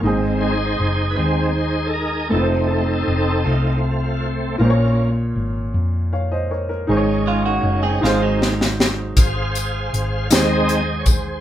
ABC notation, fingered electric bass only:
X:1
M:6/8
L:1/8
Q:3/8=53
K:Abmix
V:1 name="Fingered electric bass" clef=bass
A,,,2 G,,, E,,3 | F,,,2 F,,, C,,3 | B,,,2 A,,, F,,3 | A,,,2 G,,, A,,,3 |
A,,,2 A,,, E,,3 |]